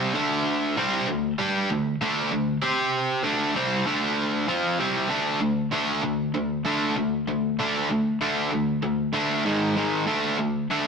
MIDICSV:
0, 0, Header, 1, 2, 480
1, 0, Start_track
1, 0, Key_signature, -1, "minor"
1, 0, Tempo, 621118
1, 110, Time_signature, 4, 2, 24, 8
1, 8401, End_track
2, 0, Start_track
2, 0, Title_t, "Overdriven electric guitar"
2, 0, Program_c, 0, 29
2, 0, Note_on_c, 0, 48, 84
2, 0, Note_on_c, 0, 55, 92
2, 0, Note_on_c, 0, 60, 88
2, 103, Note_off_c, 0, 48, 0
2, 106, Note_off_c, 0, 55, 0
2, 108, Note_on_c, 0, 50, 98
2, 109, Note_off_c, 0, 60, 0
2, 114, Note_on_c, 0, 57, 92
2, 118, Note_on_c, 0, 62, 98
2, 581, Note_off_c, 0, 50, 0
2, 584, Note_off_c, 0, 57, 0
2, 586, Note_off_c, 0, 62, 0
2, 597, Note_on_c, 0, 55, 94
2, 598, Note_on_c, 0, 48, 91
2, 606, Note_on_c, 0, 60, 102
2, 825, Note_off_c, 0, 55, 0
2, 826, Note_off_c, 0, 48, 0
2, 830, Note_off_c, 0, 60, 0
2, 834, Note_on_c, 0, 50, 59
2, 836, Note_on_c, 0, 57, 65
2, 1023, Note_off_c, 0, 50, 0
2, 1024, Note_off_c, 0, 57, 0
2, 1072, Note_on_c, 0, 55, 91
2, 1077, Note_on_c, 0, 62, 99
2, 1081, Note_on_c, 0, 67, 100
2, 1302, Note_off_c, 0, 55, 0
2, 1305, Note_off_c, 0, 62, 0
2, 1307, Note_off_c, 0, 67, 0
2, 1315, Note_on_c, 0, 50, 70
2, 1317, Note_on_c, 0, 57, 67
2, 1503, Note_off_c, 0, 50, 0
2, 1504, Note_off_c, 0, 57, 0
2, 1555, Note_on_c, 0, 50, 89
2, 1558, Note_on_c, 0, 57, 99
2, 1563, Note_on_c, 0, 62, 105
2, 1779, Note_off_c, 0, 50, 0
2, 1783, Note_off_c, 0, 57, 0
2, 1788, Note_off_c, 0, 62, 0
2, 1788, Note_on_c, 0, 50, 54
2, 1792, Note_on_c, 0, 57, 73
2, 1979, Note_off_c, 0, 50, 0
2, 1981, Note_off_c, 0, 57, 0
2, 2026, Note_on_c, 0, 60, 91
2, 2028, Note_on_c, 0, 67, 105
2, 2035, Note_on_c, 0, 72, 106
2, 2497, Note_off_c, 0, 60, 0
2, 2497, Note_on_c, 0, 50, 94
2, 2499, Note_off_c, 0, 67, 0
2, 2500, Note_on_c, 0, 57, 92
2, 2503, Note_off_c, 0, 72, 0
2, 2505, Note_on_c, 0, 62, 107
2, 2734, Note_off_c, 0, 50, 0
2, 2735, Note_off_c, 0, 57, 0
2, 2738, Note_off_c, 0, 62, 0
2, 2745, Note_on_c, 0, 48, 84
2, 2747, Note_on_c, 0, 55, 90
2, 2752, Note_on_c, 0, 60, 93
2, 2977, Note_off_c, 0, 48, 0
2, 2979, Note_off_c, 0, 55, 0
2, 2981, Note_off_c, 0, 60, 0
2, 2982, Note_on_c, 0, 50, 82
2, 2988, Note_on_c, 0, 57, 98
2, 2989, Note_on_c, 0, 62, 99
2, 3455, Note_off_c, 0, 50, 0
2, 3458, Note_off_c, 0, 57, 0
2, 3459, Note_off_c, 0, 62, 0
2, 3460, Note_on_c, 0, 53, 85
2, 3466, Note_on_c, 0, 60, 82
2, 3469, Note_on_c, 0, 65, 92
2, 3695, Note_off_c, 0, 53, 0
2, 3697, Note_off_c, 0, 60, 0
2, 3699, Note_off_c, 0, 65, 0
2, 3702, Note_on_c, 0, 48, 83
2, 3708, Note_on_c, 0, 55, 84
2, 3710, Note_on_c, 0, 60, 94
2, 3935, Note_off_c, 0, 48, 0
2, 3938, Note_off_c, 0, 55, 0
2, 3938, Note_on_c, 0, 50, 74
2, 3940, Note_off_c, 0, 60, 0
2, 3943, Note_on_c, 0, 57, 86
2, 3947, Note_on_c, 0, 62, 88
2, 4166, Note_off_c, 0, 50, 0
2, 4169, Note_off_c, 0, 57, 0
2, 4171, Note_off_c, 0, 62, 0
2, 4182, Note_on_c, 0, 50, 62
2, 4182, Note_on_c, 0, 57, 70
2, 4399, Note_off_c, 0, 50, 0
2, 4399, Note_off_c, 0, 57, 0
2, 4421, Note_on_c, 0, 50, 85
2, 4425, Note_on_c, 0, 57, 84
2, 4430, Note_on_c, 0, 62, 89
2, 4648, Note_off_c, 0, 50, 0
2, 4650, Note_off_c, 0, 57, 0
2, 4652, Note_off_c, 0, 62, 0
2, 4658, Note_on_c, 0, 50, 57
2, 4662, Note_on_c, 0, 57, 71
2, 4877, Note_off_c, 0, 50, 0
2, 4879, Note_off_c, 0, 57, 0
2, 4903, Note_on_c, 0, 50, 68
2, 4906, Note_on_c, 0, 57, 81
2, 5119, Note_off_c, 0, 50, 0
2, 5121, Note_off_c, 0, 57, 0
2, 5144, Note_on_c, 0, 50, 77
2, 5145, Note_on_c, 0, 57, 91
2, 5150, Note_on_c, 0, 62, 83
2, 5370, Note_off_c, 0, 50, 0
2, 5370, Note_off_c, 0, 57, 0
2, 5373, Note_off_c, 0, 62, 0
2, 5383, Note_on_c, 0, 50, 58
2, 5388, Note_on_c, 0, 57, 67
2, 5600, Note_off_c, 0, 50, 0
2, 5602, Note_off_c, 0, 57, 0
2, 5622, Note_on_c, 0, 50, 58
2, 5627, Note_on_c, 0, 57, 64
2, 5839, Note_off_c, 0, 50, 0
2, 5841, Note_off_c, 0, 57, 0
2, 5866, Note_on_c, 0, 50, 83
2, 5873, Note_on_c, 0, 57, 83
2, 5876, Note_on_c, 0, 62, 94
2, 6091, Note_off_c, 0, 50, 0
2, 6094, Note_off_c, 0, 57, 0
2, 6096, Note_off_c, 0, 62, 0
2, 6101, Note_on_c, 0, 50, 60
2, 6107, Note_on_c, 0, 57, 66
2, 6319, Note_off_c, 0, 50, 0
2, 6322, Note_off_c, 0, 57, 0
2, 6344, Note_on_c, 0, 50, 82
2, 6348, Note_on_c, 0, 62, 88
2, 6349, Note_on_c, 0, 57, 85
2, 6570, Note_off_c, 0, 50, 0
2, 6572, Note_off_c, 0, 62, 0
2, 6573, Note_off_c, 0, 57, 0
2, 6585, Note_on_c, 0, 50, 63
2, 6587, Note_on_c, 0, 57, 64
2, 6801, Note_off_c, 0, 50, 0
2, 6802, Note_off_c, 0, 57, 0
2, 6820, Note_on_c, 0, 50, 65
2, 6824, Note_on_c, 0, 57, 65
2, 7039, Note_off_c, 0, 50, 0
2, 7041, Note_off_c, 0, 57, 0
2, 7062, Note_on_c, 0, 50, 74
2, 7063, Note_on_c, 0, 57, 81
2, 7069, Note_on_c, 0, 62, 97
2, 7290, Note_off_c, 0, 50, 0
2, 7291, Note_off_c, 0, 57, 0
2, 7293, Note_off_c, 0, 62, 0
2, 7299, Note_on_c, 0, 44, 82
2, 7306, Note_on_c, 0, 51, 81
2, 7309, Note_on_c, 0, 56, 92
2, 7529, Note_off_c, 0, 44, 0
2, 7532, Note_off_c, 0, 51, 0
2, 7533, Note_off_c, 0, 56, 0
2, 7537, Note_on_c, 0, 44, 69
2, 7544, Note_on_c, 0, 51, 83
2, 7546, Note_on_c, 0, 56, 82
2, 7768, Note_off_c, 0, 44, 0
2, 7772, Note_off_c, 0, 51, 0
2, 7773, Note_off_c, 0, 56, 0
2, 7777, Note_on_c, 0, 50, 78
2, 7780, Note_on_c, 0, 57, 91
2, 7784, Note_on_c, 0, 62, 88
2, 8008, Note_off_c, 0, 50, 0
2, 8010, Note_off_c, 0, 57, 0
2, 8012, Note_off_c, 0, 62, 0
2, 8023, Note_on_c, 0, 50, 68
2, 8026, Note_on_c, 0, 57, 73
2, 8242, Note_off_c, 0, 50, 0
2, 8243, Note_off_c, 0, 57, 0
2, 8270, Note_on_c, 0, 50, 84
2, 8274, Note_on_c, 0, 57, 84
2, 8274, Note_on_c, 0, 62, 86
2, 8401, Note_off_c, 0, 50, 0
2, 8401, Note_off_c, 0, 57, 0
2, 8401, Note_off_c, 0, 62, 0
2, 8401, End_track
0, 0, End_of_file